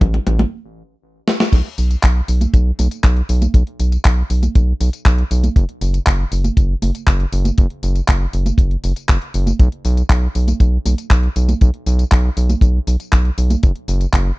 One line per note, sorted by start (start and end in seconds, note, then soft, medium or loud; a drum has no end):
0.01 0.19 A1 loud
0.01 kick loud
0.01 closed hi-hat medium
0.01 mid tom medium
0.14 closed hi-hat soft
0.14 mid tom medium
0.27 0.45 A1 loud
0.27 closed hi-hat medium
0.27 mid tom loud
0.39 closed hi-hat soft
0.39 mid tom medium
0.39 high conga medium
1.28 snare medium
1.40 snare loud
1.52 1.62 B1 loud
1.52 kick loud
1.52 closed hi-hat medium
1.52 crash loud
1.52 tambourine soft
1.65 closed hi-hat soft
1.78 1.96 B1 medium
1.78 open hi-hat loud
1.78 tambourine medium
1.91 closed hi-hat medium
1.91 tambourine soft
2.03 2.21 B1 loud
2.03 kick loud
2.03 clap loud
2.03 closed hi-hat medium
2.03 tambourine soft
2.28 2.46 B1 loud
2.28 open hi-hat loud
2.28 tambourine medium
2.41 closed hi-hat medium
2.41 tambourine soft
2.41 high conga medium
2.54 2.71 B1 medium
2.54 kick loud
2.54 closed hi-hat medium
2.54 tambourine soft
2.79 2.88 B1 loud
2.79 open hi-hat loud
2.79 tambourine medium
2.79 high conga medium
2.91 closed hi-hat medium
2.91 tambourine soft
3.04 3.22 B1 medium
3.04 kick loud
3.04 clap loud
3.04 closed hi-hat medium
3.04 tambourine soft
3.17 closed hi-hat soft
3.29 3.47 B1 loud
3.29 open hi-hat loud
3.29 tambourine medium
3.42 closed hi-hat medium
3.42 tambourine soft
3.42 high conga medium
3.54 3.63 B1 loud
3.54 kick loud
3.54 closed hi-hat medium
3.54 tambourine soft
3.67 closed hi-hat soft
3.80 3.97 B1 medium
3.80 open hi-hat loud
3.80 tambourine medium
3.92 closed hi-hat medium
3.92 tambourine soft
4.05 4.23 B1 loud
4.05 kick loud
4.05 clap loud
4.05 closed hi-hat medium
4.05 tambourine soft
4.30 4.48 B1 loud
4.30 open hi-hat loud
4.30 tambourine medium
4.43 closed hi-hat medium
4.43 tambourine soft
4.43 high conga medium
4.55 4.73 B1 medium
4.55 kick loud
4.55 closed hi-hat medium
4.55 tambourine soft
4.80 4.89 B1 loud
4.80 open hi-hat loud
4.80 tambourine medium
4.93 closed hi-hat medium
4.93 tambourine soft
5.05 5.23 B1 medium
5.05 kick loud
5.05 clap loud
5.05 closed hi-hat medium
5.05 tambourine soft
5.18 closed hi-hat soft
5.31 5.49 B1 medium
5.31 open hi-hat loud
5.31 tambourine medium
5.44 closed hi-hat medium
5.44 tambourine soft
5.44 high conga medium
5.56 5.65 F#1 loud
5.56 kick loud
5.56 closed hi-hat medium
5.56 tambourine soft
5.69 closed hi-hat soft
5.81 5.99 F#1 medium
5.81 open hi-hat loud
5.81 tambourine medium
5.94 closed hi-hat medium
5.94 tambourine soft
6.07 6.25 F#1 loud
6.07 kick loud
6.07 clap loud
6.07 closed hi-hat medium
6.07 tambourine soft
6.32 6.50 F#1 loud
6.32 open hi-hat loud
6.32 tambourine medium
6.44 closed hi-hat medium
6.44 tambourine soft
6.44 high conga medium
6.57 6.75 F#1 medium
6.57 kick loud
6.57 closed hi-hat medium
6.57 tambourine soft
6.82 6.91 F#1 loud
6.82 open hi-hat loud
6.82 tambourine medium
6.82 high conga medium
6.95 closed hi-hat medium
6.95 tambourine soft
7.07 7.25 F#1 medium
7.07 kick loud
7.07 clap loud
7.07 closed hi-hat medium
7.07 tambourine soft
7.20 closed hi-hat soft
7.32 7.50 F#1 loud
7.32 open hi-hat loud
7.32 tambourine medium
7.45 closed hi-hat medium
7.45 tambourine soft
7.45 high conga medium
7.58 7.67 F#1 loud
7.58 kick loud
7.58 closed hi-hat medium
7.58 tambourine soft
7.70 closed hi-hat soft
7.83 8.01 F#1 medium
7.83 open hi-hat loud
7.83 tambourine medium
7.96 closed hi-hat medium
7.96 tambourine soft
8.08 8.26 F#1 loud
8.08 kick loud
8.08 clap loud
8.08 closed hi-hat medium
8.08 tambourine soft
8.33 8.51 F#1 loud
8.33 open hi-hat loud
8.33 tambourine medium
8.46 closed hi-hat medium
8.46 tambourine soft
8.46 high conga medium
8.58 8.76 F#1 medium
8.58 kick loud
8.58 closed hi-hat medium
8.58 tambourine soft
8.71 closed hi-hat soft
8.84 8.93 F#1 loud
8.84 open hi-hat loud
8.84 tambourine medium
8.96 closed hi-hat medium
8.96 tambourine soft
9.09 9.18 F#1 medium
9.09 kick loud
9.09 clap loud
9.09 closed hi-hat medium
9.09 tambourine soft
9.22 closed hi-hat soft
9.34 9.52 F#1 loud
9.34 open hi-hat loud
9.34 tambourine medium
9.47 closed hi-hat medium
9.47 tambourine soft
9.47 high conga medium
9.59 9.68 B1 loud
9.59 kick loud
9.59 closed hi-hat medium
9.59 tambourine soft
9.72 closed hi-hat soft
9.85 10.03 B1 medium
9.85 open hi-hat loud
9.85 tambourine medium
9.97 closed hi-hat soft
9.97 tambourine soft
10.10 10.28 B1 loud
10.10 kick loud
10.10 clap loud
10.10 closed hi-hat medium
10.10 tambourine soft
10.35 10.53 B1 loud
10.35 open hi-hat loud
10.35 tambourine medium
10.48 closed hi-hat medium
10.48 tambourine soft
10.48 high conga medium
10.60 10.78 B1 medium
10.60 kick loud
10.60 closed hi-hat medium
10.60 tambourine soft
10.86 10.94 B1 loud
10.86 open hi-hat loud
10.86 tambourine medium
10.86 high conga medium
10.98 closed hi-hat medium
10.98 tambourine soft
11.10 11.28 B1 medium
11.10 kick loud
11.10 clap loud
11.10 closed hi-hat medium
11.10 tambourine soft
11.23 closed hi-hat soft
11.36 11.54 B1 medium
11.36 open hi-hat loud
11.36 tambourine medium
11.49 closed hi-hat medium
11.49 tambourine soft
11.49 high conga medium
11.61 11.70 B1 loud
11.61 kick loud
11.61 closed hi-hat medium
11.61 tambourine soft
11.74 closed hi-hat soft
11.86 12.04 B1 medium
11.86 open hi-hat loud
11.86 tambourine medium
11.99 closed hi-hat medium
11.99 tambourine soft
12.12 12.30 B1 loud
12.12 kick loud
12.12 clap loud
12.12 closed hi-hat medium
12.12 tambourine soft
12.37 12.55 B1 loud
12.37 open hi-hat loud
12.37 tambourine medium
12.49 closed hi-hat medium
12.49 tambourine soft
12.49 high conga medium
12.61 12.79 B1 medium
12.61 kick loud
12.61 closed hi-hat medium
12.61 tambourine soft
12.87 12.96 B1 loud
12.87 open hi-hat loud
12.87 tambourine medium
13.00 closed hi-hat medium
13.00 tambourine soft
13.13 13.30 B1 medium
13.13 kick loud
13.13 clap loud
13.13 closed hi-hat medium
13.13 tambourine soft
13.25 closed hi-hat soft
13.38 13.56 B1 loud
13.38 open hi-hat loud
13.38 tambourine medium
13.50 closed hi-hat medium
13.50 tambourine soft
13.50 high conga medium
13.63 13.72 F#1 loud
13.63 kick loud
13.63 closed hi-hat medium
13.63 tambourine soft
13.75 closed hi-hat soft
13.88 14.06 F#1 medium
13.88 open hi-hat loud
13.88 tambourine medium
14.01 closed hi-hat medium
14.01 tambourine soft
14.13 14.31 F#1 loud
14.13 kick medium
14.13 clap loud
14.13 closed hi-hat medium
14.13 tambourine soft